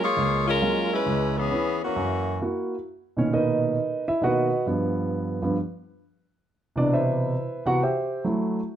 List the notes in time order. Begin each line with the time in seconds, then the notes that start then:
0.03 A#3 F4 G#4 C#5
0.17 C#2
0.48 G#3 C#4 F4 A#4
0.62 F#3 G#3 A#3 F4
0.93 G#3 C#4 E4 B4
1.06 C#2
1.37 E3 B3 C#4 G#4
1.51 B3 C#4 E4
1.83 E3 A#3 C#4 F#4
1.96 F#2
2.42 A#3 E4 F#4
3.17 A#2 B2 D#3 C#4 C#5
3.33 D#4 A#4 B4 D#5
4.08 E4 E5
4.21 B2 D#3 A#3 F#4 B4 D#5 F#5
4.66 G2 F3 B3
5.42 G2 F3 B3
6.76 B2 C3 E3 D4 D5
6.94 E4 B4 C5 E5
7.66 C3 E3 B3 F#4 F#5
7.83 G4 C5 E5 G5
8.24 F#3 A3 E4